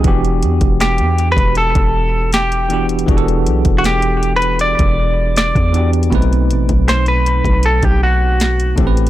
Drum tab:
HH |x-x-x-x-x-x-x-x-x-x-----x-x-x-xx|xxx-x-x-x-x-x-x-x-x-----x-x-x-xx|xxx-x-x-x-x-x-x-x-x-----x-x-x-xx|
SD |--------o---------------o-------|--------o---------------o-------|--------o---------------o-------|
BD |o-----o-------o---o-------------|o-----o-----------o-------o-----|o-----o-------o---o---------o---|